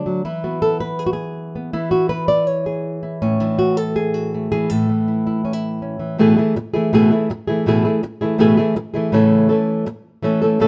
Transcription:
Already playing: D3 A3 D4 F#4
0.06 F#3
0.25 E3 E4
0.44 B3 F#4
0.62 A4
0.80 B4
0.99 G#4
1.06 F#4
1.13 G#4
1.56 B3
1.73 E3 E4
1.91 E4 F#4
2.09 B4
2.28 D5
2.47 C#5
2.66 G#4
3.03 E4
3.22 A2 C#4
3.40 E3 D4
3.59 F#4
3.77 A4
3.96 G#4
4.14 F#4
4.34 A3
4.52 E3 G#4
4.70 A2 A4
4.89 E3
5.08 E4
5.27 E4
5.45 C#4
5.53 E4
5.82 C#4
5.99 E3
6.18 A2 B2 E3 A3 E4 G#4
6.36 E3 A3 E4 G#4
6.56 muted nylon-string guitar stroke
6.74 E3 A3 E4 G#4
6.93 A2 B2 E3 A3 E4 G#4
7.11 E3 A3 E4 G#4
7.30 muted nylon-string guitar stroke
7.48 E3 A3 E4 G#4
7.66 A2 B2 E3 A3 E4 G#4
7.85 E3 A3 E4 G#4
8.03 muted nylon-string guitar stroke
8.21 E3 A3 E4 G#4
8.38 A2 B2 E3 A3 E4 G#4
8.57 E3 A3 E4 G#4
8.76 muted nylon-string guitar stroke
8.94 E3 A3 E4 G#4
9.12 A2 C#3 E3 A3 C#4 A4
9.49 E3 A3 C#4 A4
9.86 muted nylon-string guitar stroke
10.23 E3 A3 C#4 A4
10.42 E3 A3 C#4 A4
10.59 A2 C#3 E3 A3 C#4 A4

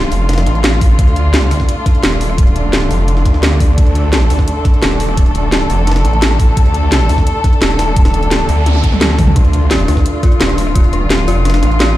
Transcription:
Already playing: D#1 D3 A3 D4 F4
0.03 snare
0.12 F1, closed hi-hat, open hi-hat
0.29 snare, closed hi-hat
0.33 snare, closed hi-hat
0.38 snare, closed hi-hat
0.46 A1, snare, closed hi-hat
0.55 closed hi-hat
0.64 snare, closed hi-hat
0.81 kick, closed hi-hat, open hi-hat
0.99 D2, kick, closed hi-hat
1.07 closed hi-hat
1.16 closed hi-hat
1.34 snare, closed hi-hat
1.42 closed hi-hat
1.51 D2, cross-stick, closed hi-hat, open hi-hat
1.60 kick, snare
1.69 closed hi-hat
1.86 kick, snare, closed hi-hat
1.95 closed hi-hat
2.03 D#1, snare, closed hi-hat
2.12 closed hi-hat
2.21 open hi-hat
2.30 cross-stick
2.38 kick, closed hi-hat
2.47 closed hi-hat
2.56 D#1, closed hi-hat
2.73 snare, closed hi-hat
2.82 snare
2.91 F1, closed hi-hat, open hi-hat
3.08 closed hi-hat
3.17 snare
3.25 D2, kick, snare, closed hi-hat
3.34 snare
3.43 snare, closed hi-hat
3.60 kick, closed hi-hat, open hi-hat
3.78 D2 A4, kick, closed hi-hat
3.87 closed hi-hat
3.95 closed hi-hat
4.13 snare, closed hi-hat
4.21 closed hi-hat
4.30 D2, cross-stick, closed hi-hat, open hi-hat
4.39 kick, snare
4.48 closed hi-hat
4.65 kick, snare, closed hi-hat
4.74 closed hi-hat
4.82 D#1, snare, closed hi-hat
4.91 closed hi-hat
5.00 open hi-hat
5.09 cross-stick
5.17 kick, closed hi-hat
5.26 closed hi-hat
5.35 D#1, closed hi-hat
5.52 snare, closed hi-hat
5.61 snare
5.70 F1, closed hi-hat, open hi-hat
5.87 snare, closed hi-hat
5.92 snare, closed hi-hat
5.96 snare, closed hi-hat
6.05 A1, snare, closed hi-hat
6.13 closed hi-hat
6.22 snare, closed hi-hat
6.39 kick, closed hi-hat, open hi-hat
6.57 D2, kick, closed hi-hat
6.66 closed hi-hat
6.74 closed hi-hat
6.92 snare, closed hi-hat
7.01 closed hi-hat
7.09 D2, cross-stick, closed hi-hat, open hi-hat
7.18 kick, snare
7.27 closed hi-hat
7.44 kick, snare, closed hi-hat
7.53 closed hi-hat
7.62 D#1, snare, closed hi-hat
7.70 closed hi-hat
7.79 snare, closed hi-hat, open hi-hat
7.88 cross-stick
7.96 kick, closed hi-hat, noise sweep
8.05 snare, closed hi-hat
8.14 D#1, closed hi-hat
8.23 closed hi-hat
8.31 snare, closed hi-hat
8.49 D2, closed hi-hat, open hi-hat
8.66 closed hi-hat, high tom
8.75 closed hi-hat, high tom
8.84 kick, snare, closed hi-hat
8.92 snare, mid tom
9.01 D2, snare, closed hi-hat, mid tom
9.10 snare
9.19 kick, cross-stick, closed hi-hat, mid tom, open hi-hat
9.27 mid tom
9.36 D2 D4 F4, kick, closed hi-hat
9.45 closed hi-hat
9.53 closed hi-hat
9.71 F4, snare, closed hi-hat
9.80 closed hi-hat
9.88 D2 D4, cross-stick, closed hi-hat, open hi-hat
9.97 kick, snare
10.06 closed hi-hat
10.23 F4, kick, snare, closed hi-hat
10.32 closed hi-hat
10.41 D#1 D4, snare, closed hi-hat
10.49 closed hi-hat
10.58 open hi-hat
10.67 cross-stick
10.75 F4, kick, closed hi-hat
10.84 closed hi-hat
10.93 D#1 D4, closed hi-hat
11.10 snare, closed hi-hat
11.19 snare
11.28 F1 F4, closed hi-hat, open hi-hat
11.45 D4, snare, closed hi-hat
11.50 snare, closed hi-hat
11.54 snare, closed hi-hat
11.63 A1, snare, closed hi-hat
11.71 closed hi-hat
11.80 F4, snare, closed hi-hat

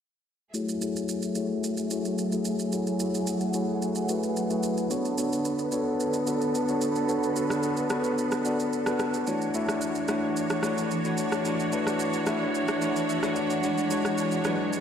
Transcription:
0.54 F#3 A3 E4 F#4 G#4 C#5 E5, shaker
0.69 shaker
0.81 A3 E4 F#4 G#4 C#5, shaker
0.96 shaker
1.09 shaker
1.22 shaker
1.35 A3 E4 F#4 G#4 C#5, shaker
1.64 shaker
1.77 shaker
1.90 A3 E4 F#4 G#4 C#5, shaker
2.05 shaker
2.18 shaker
2.32 A3 E4 F#4 G#4 E5, shaker
2.45 shaker
2.59 shaker
2.72 A3 E4 F#4 G#4 C#5 F#5, shaker
2.87 shaker
2.99 A3 E4 F#4 G#4 E5, shaker
3.15 shaker
3.27 shaker
3.41 shaker
3.54 A3 E4 F#4 G#4 C#5, shaker
3.82 shaker
3.95 shaker
4.09 A3 E4 F#4 G#4 B4, shaker
4.23 shaker
4.37 shaker
4.50 A3 E4 F#4 G#4 B4, shaker
4.63 shaker
4.77 shaker
4.90 D3 B3 D4 F#4 A4 B4 C#5, shaker
5.05 shaker
5.17 B3 D4 F#4 A4 C#5, shaker
5.33 shaker
5.45 shaker
5.59 shaker
5.72 B3 D4 F#4 A4 C#5, shaker
6.00 shaker
6.13 shaker
6.27 B3 D4 F#4 A4 B4, shaker
6.41 shaker
6.55 shaker
6.68 B3 D4 F#4 A4 C#5, shaker
6.81 shaker
6.96 shaker
7.08 B3 D4 F#4 A4 C#5, shaker
7.23 shaker
7.36 B3 D4 F#4 A4 B4, shaker
7.50 cross-stick, shaker
7.63 shaker
7.77 shaker
7.90 B3 D4 F#4 A4 B4, cross-stick, shaker
8.04 shaker
8.18 shaker
8.32 cross-stick, shaker
8.45 B3 D4 F#4 A4 D5, shaker
8.60 shaker
8.73 shaker
8.86 B3 D4 F#4 A4 B4, cross-stick, shaker
8.99 cross-stick, shaker
9.14 shaker
9.27 E3 A3 D4 E4 F#4 C#5, shaker
9.42 shaker
9.54 A3 D4 E4 F#4 E5, shaker
9.69 cross-stick, shaker
9.81 shaker
9.95 shaker
10.08 A3 D4 E4 F#4 C#5, cross-stick, shaker
10.37 shaker
10.50 cross-stick, shaker
10.63 A3 D4 E4 F#4 C#5, cross-stick, shaker
10.78 shaker
10.91 shaker
11.05 A3 D4 E4 F#4 C#5, shaker
11.17 shaker
11.32 cross-stick, shaker
11.45 A3 D4 E4 F#4 C#5, shaker
11.60 shaker
11.72 A3 D4 E4 F#4 B4, shaker
11.87 cross-stick, shaker
12.00 shaker
12.13 shaker
12.26 A3 D4 E4 F#4 E5, cross-stick, shaker
12.55 shaker
12.68 cross-stick, shaker
12.81 A3 D4 E4 F#4 C#5, shaker
12.96 shaker
13.09 E5, shaker
13.23 A3 D4 E4 F#4 C#5, cross-stick, shaker
13.36 F#5, shaker
13.50 shaker
13.63 G#3 D4 E4 F#4 C#5, shaker
13.78 shaker
13.90 G#3 D4 E4 F#4 C#5, shaker
14.05 cross-stick, shaker
14.18 shaker
14.31 shaker
14.44 F#3 D4 E4 F#4 B4, cross-stick, shaker
14.51 G#3
14.73 shaker

